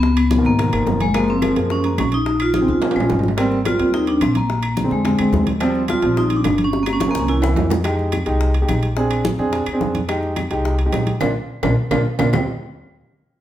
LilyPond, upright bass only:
\new Staff \with { instrumentName = "Upright bass" } { \clef bass \time 4/4 \key ees \major \tempo 4 = 215 des,4. aes,,4 g,,8 ges,,4~ | ges,,4. ges,4. bes,,4~ | bes,,4. ees,4 bes,,8 aes,,4~ | aes,,4. ees,4. bes,,4~ |
bes,,4. f,4 f,8 ees,4~ | ees,4. bes,,4. g,,4~ | g,,4. c,4. f,4~ | f,4. c,4. bes,,4~ |
bes,,4. f,4 ees,8 f,4~ | f,4. c,4. bes,,4 | bes,,8 r4 bes,,8 r8 bes,,8 r8 bes,,8 | ees,8 r2. r8 | }